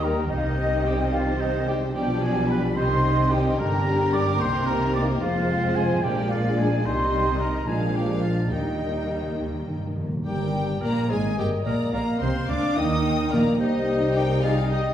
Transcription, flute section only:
0.03 0.31 A#5 medium
0.29 0.33 D#5 medium
0.36 0.44 F5 medium
0.42 0.85 D#5 medium
0.84 1.13 G5 medium
1.12 1.19 F5 medium
1.39 1.67 D#5 medium
1.66 1.72 G5 medium
1.94 2.21 G5 medium
2.23 2.50 G#5 medium
2.50 2.77 B5 medium
2.78 3.32 C6 medium
3.33 3.59 G5 medium
3.60 4.12 A#5 medium
4.14 4.40 D6 medium
4.40 4.67 C6 medium
4.66 4.93 A#5 medium
4.94 5.00 D6 medium
5.22 5.74 F5 medium
5.76 6.03 G#5 medium
6.02 6.29 G5 medium
6.30 6.57 F5 medium
6.58 6.84 G#5 medium
6.84 7.39 C6 medium
7.39 7.66 A#5 medium
7.67 7.95 G#5 medium
7.93 8.00 G5 medium
8.22 8.29 F5 medium
8.51 9.37 D#5 medium
10.26 10.78 G5 medium
10.81 11.10 A#5 medium
11.09 11.37 G#5 medium
11.39 11.45 G5 medium
11.66 11.72 A#5 medium
11.95 12.01 A#5 medium
12.22 12.28 C6 medium
12.49 12.76 D6 medium
12.77 13.32 D#6 medium
13.32 13.60 A#5 medium
13.59 14.14 D#5 medium
14.15 14.21 G5 medium
14.44 14.70 F5 medium
14.71 14.77 D#5 medium

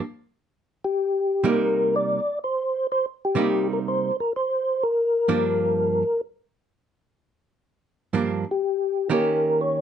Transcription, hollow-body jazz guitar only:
1.44 2.18 C3 soft
1.44 2.18 G3 medium
1.44 2.19 A#3 medium
1.44 2.19 D#4 medium
3.35 4.10 C3 medium
3.35 4.10 G3 medium
3.35 4.10 A#3 medium
3.35 4.11 D#4 medium
5.28 6.02 G2 soft
5.28 6.02 F3 medium
5.28 6.02 A#3 soft
5.28 6.02 D4 medium
8.13 8.43 G2 soft
8.13 8.43 F3 soft
8.13 8.44 A#3 medium
8.13 8.44 D4 medium
9.10 9.81 D#3 medium
9.10 9.81 A#3 medium
9.10 9.81 C#4 medium
9.10 9.81 G4 medium

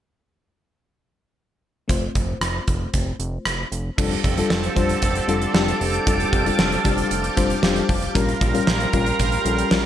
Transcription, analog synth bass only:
1.89 2.08 F1 loud
2.15 2.34 F1 medium
2.41 2.60 F1 loud
2.68 2.86 F1 medium
2.94 3.12 F1 loud
3.19 3.38 F1 loud
3.46 3.65 F1 medium
3.72 3.91 F1 medium
3.98 4.17 F1 loud
4.24 4.43 F1 loud
4.50 4.69 F1 loud
4.76 4.95 F1 loud
5.02 5.21 F1 medium
5.28 5.47 F1 loud
5.54 5.73 F1 loud
5.80 5.99 F1 loud
6.07 6.26 F1 loud
6.33 6.52 F1 loud
6.59 6.78 F1 medium
6.85 7.04 F1 loud
7.11 7.30 F1 loud
7.37 7.56 F1 loud
7.63 7.82 F1 loud
7.89 8.08 F1 medium
8.15 8.34 A#1 loud
8.41 8.60 A#1 loud
8.67 8.86 A#1 medium
8.93 9.12 A#1 loud
9.19 9.38 A#1 medium
9.45 9.64 A#1 loud
9.71 9.86 A#1 loud

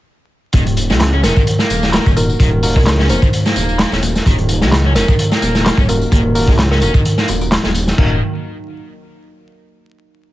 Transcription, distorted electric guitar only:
0.54 0.62 D#3 medium
0.90 0.94 G#3 medium
1.13 1.20 C#4 medium
1.24 1.36 C#4 medium
1.36 1.41 D#3 loud
1.60 2.05 A#3 loud
2.06 2.10 C#4 medium
2.40 2.48 D#3 medium
2.76 2.80 G#3 medium
2.99 3.06 C#4 medium
3.10 3.22 C#4 medium
3.23 3.27 D#3 loud
3.46 3.91 A#3 loud
3.92 3.96 C#4 medium
4.26 4.35 D#3 medium
4.62 4.66 G#3 medium
4.85 4.92 C#4 medium
4.96 5.08 C#4 medium
5.09 5.13 D#3 loud
5.32 5.77 A#3 loud
5.79 5.83 C#4 medium
6.12 6.20 D#3 medium
6.48 6.52 G#3 medium
6.71 6.78 C#4 medium
6.82 6.94 C#4 medium
6.94 6.99 D#3 loud
7.18 7.27 A#3 loud
7.65 7.69 G#3 medium
7.98 8.20 D#3 medium

